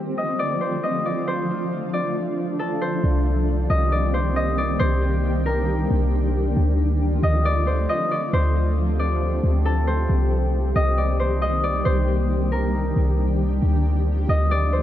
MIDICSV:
0, 0, Header, 1, 4, 480
1, 0, Start_track
1, 0, Tempo, 441176
1, 1385, Time_signature, 4, 2, 24, 8
1, 16130, End_track
2, 0, Start_track
2, 0, Title_t, "Harp"
2, 0, Program_c, 0, 46
2, 0, Note_on_c, 0, 70, 77
2, 192, Note_on_c, 0, 75, 77
2, 428, Note_on_c, 0, 74, 91
2, 494, Note_off_c, 0, 75, 0
2, 568, Note_off_c, 0, 70, 0
2, 664, Note_on_c, 0, 72, 76
2, 908, Note_on_c, 0, 75, 84
2, 973, Note_off_c, 0, 74, 0
2, 1148, Note_on_c, 0, 74, 75
2, 1213, Note_off_c, 0, 75, 0
2, 1383, Note_off_c, 0, 72, 0
2, 1388, Note_on_c, 0, 72, 98
2, 2102, Note_off_c, 0, 74, 0
2, 2106, Note_on_c, 0, 74, 76
2, 2822, Note_on_c, 0, 69, 83
2, 3058, Note_off_c, 0, 72, 0
2, 3062, Note_on_c, 0, 72, 76
2, 4023, Note_on_c, 0, 75, 90
2, 4088, Note_off_c, 0, 74, 0
2, 4264, Note_on_c, 0, 74, 76
2, 4329, Note_off_c, 0, 75, 0
2, 4498, Note_off_c, 0, 72, 0
2, 4502, Note_on_c, 0, 72, 83
2, 4744, Note_on_c, 0, 75, 87
2, 4809, Note_off_c, 0, 74, 0
2, 4981, Note_on_c, 0, 74, 89
2, 5046, Note_off_c, 0, 75, 0
2, 5211, Note_off_c, 0, 72, 0
2, 5212, Note_off_c, 0, 69, 0
2, 5216, Note_on_c, 0, 72, 111
2, 5939, Note_on_c, 0, 70, 80
2, 6990, Note_off_c, 0, 74, 0
2, 7369, Note_off_c, 0, 72, 0
2, 7872, Note_on_c, 0, 75, 85
2, 8111, Note_on_c, 0, 74, 100
2, 8176, Note_off_c, 0, 75, 0
2, 8247, Note_off_c, 0, 70, 0
2, 8344, Note_on_c, 0, 72, 81
2, 8588, Note_on_c, 0, 75, 90
2, 8653, Note_off_c, 0, 74, 0
2, 8827, Note_on_c, 0, 74, 81
2, 8892, Note_off_c, 0, 75, 0
2, 9063, Note_off_c, 0, 72, 0
2, 9067, Note_on_c, 0, 72, 102
2, 9781, Note_off_c, 0, 74, 0
2, 9786, Note_on_c, 0, 74, 80
2, 10504, Note_on_c, 0, 69, 85
2, 10739, Note_off_c, 0, 72, 0
2, 10743, Note_on_c, 0, 72, 78
2, 11704, Note_on_c, 0, 75, 91
2, 11770, Note_off_c, 0, 74, 0
2, 11943, Note_on_c, 0, 74, 77
2, 12009, Note_off_c, 0, 75, 0
2, 12179, Note_off_c, 0, 72, 0
2, 12184, Note_on_c, 0, 72, 82
2, 12423, Note_on_c, 0, 75, 87
2, 12489, Note_off_c, 0, 74, 0
2, 12662, Note_on_c, 0, 74, 90
2, 12727, Note_off_c, 0, 75, 0
2, 12891, Note_off_c, 0, 72, 0
2, 12893, Note_off_c, 0, 69, 0
2, 12895, Note_on_c, 0, 72, 111
2, 13619, Note_on_c, 0, 70, 81
2, 14671, Note_off_c, 0, 74, 0
2, 15049, Note_off_c, 0, 72, 0
2, 15550, Note_on_c, 0, 75, 83
2, 15788, Note_on_c, 0, 74, 101
2, 15853, Note_off_c, 0, 75, 0
2, 15927, Note_off_c, 0, 70, 0
2, 16023, Note_on_c, 0, 72, 81
2, 16130, Note_off_c, 0, 72, 0
2, 16130, Note_off_c, 0, 74, 0
2, 16130, End_track
3, 0, Start_track
3, 0, Title_t, "Ambient pad"
3, 0, Program_c, 1, 92
3, 0, Note_on_c, 1, 50, 81
3, 0, Note_on_c, 1, 53, 77
3, 0, Note_on_c, 1, 57, 77
3, 0, Note_on_c, 1, 60, 74
3, 0, Note_on_c, 1, 65, 95
3, 1342, Note_off_c, 1, 60, 0
3, 1385, Note_on_c, 1, 62, 78
3, 3265, Note_off_c, 1, 65, 0
3, 3266, Note_off_c, 1, 50, 0
3, 3266, Note_off_c, 1, 53, 0
3, 3266, Note_off_c, 1, 57, 0
3, 3286, Note_off_c, 1, 62, 0
3, 3306, Note_on_c, 1, 55, 79
3, 3307, Note_on_c, 1, 51, 82
3, 3307, Note_on_c, 1, 58, 78
3, 3307, Note_on_c, 1, 60, 78
3, 3307, Note_on_c, 1, 67, 95
3, 5207, Note_off_c, 1, 60, 0
3, 5224, Note_on_c, 1, 62, 78
3, 7107, Note_off_c, 1, 55, 0
3, 7108, Note_off_c, 1, 51, 0
3, 7108, Note_off_c, 1, 58, 0
3, 7108, Note_off_c, 1, 67, 0
3, 7125, Note_off_c, 1, 62, 0
3, 7145, Note_on_c, 1, 50, 85
3, 7146, Note_on_c, 1, 53, 77
3, 7146, Note_on_c, 1, 57, 79
3, 7146, Note_on_c, 1, 60, 77
3, 7146, Note_on_c, 1, 65, 91
3, 9046, Note_off_c, 1, 65, 0
3, 9065, Note_on_c, 1, 67, 93
3, 10947, Note_off_c, 1, 50, 0
3, 10947, Note_off_c, 1, 53, 0
3, 10947, Note_off_c, 1, 57, 0
3, 10983, Note_on_c, 1, 55, 77
3, 10983, Note_on_c, 1, 58, 77
3, 10984, Note_on_c, 1, 51, 83
3, 12862, Note_off_c, 1, 60, 0
3, 12906, Note_on_c, 1, 62, 77
3, 14782, Note_off_c, 1, 67, 0
3, 14786, Note_off_c, 1, 51, 0
3, 14786, Note_off_c, 1, 55, 0
3, 14786, Note_off_c, 1, 58, 0
3, 14806, Note_off_c, 1, 62, 0
3, 14823, Note_on_c, 1, 50, 86
3, 14823, Note_on_c, 1, 53, 77
3, 14823, Note_on_c, 1, 57, 78
3, 14823, Note_on_c, 1, 60, 80
3, 14823, Note_on_c, 1, 65, 91
3, 16130, Note_off_c, 1, 50, 0
3, 16130, Note_off_c, 1, 53, 0
3, 16130, Note_off_c, 1, 57, 0
3, 16130, Note_off_c, 1, 60, 0
3, 16130, Note_off_c, 1, 65, 0
3, 16130, End_track
4, 0, Start_track
4, 0, Title_t, "808-style bass"
4, 0, Program_c, 2, 38
4, 3305, Note_on_c, 2, 36, 112
4, 3996, Note_off_c, 2, 36, 0
4, 4025, Note_on_c, 2, 36, 102
4, 5181, Note_off_c, 2, 36, 0
4, 5226, Note_on_c, 2, 36, 110
4, 6382, Note_off_c, 2, 36, 0
4, 6426, Note_on_c, 2, 36, 107
4, 7117, Note_off_c, 2, 36, 0
4, 7145, Note_on_c, 2, 38, 114
4, 7836, Note_off_c, 2, 38, 0
4, 7866, Note_on_c, 2, 38, 103
4, 8556, Note_off_c, 2, 38, 0
4, 9065, Note_on_c, 2, 38, 115
4, 10222, Note_off_c, 2, 38, 0
4, 10265, Note_on_c, 2, 38, 99
4, 10956, Note_off_c, 2, 38, 0
4, 10985, Note_on_c, 2, 36, 113
4, 11676, Note_off_c, 2, 36, 0
4, 11705, Note_on_c, 2, 36, 103
4, 12861, Note_off_c, 2, 36, 0
4, 12904, Note_on_c, 2, 36, 109
4, 14061, Note_off_c, 2, 36, 0
4, 14104, Note_on_c, 2, 36, 105
4, 14795, Note_off_c, 2, 36, 0
4, 14824, Note_on_c, 2, 38, 108
4, 15516, Note_off_c, 2, 38, 0
4, 15544, Note_on_c, 2, 38, 105
4, 16130, Note_off_c, 2, 38, 0
4, 16130, End_track
0, 0, End_of_file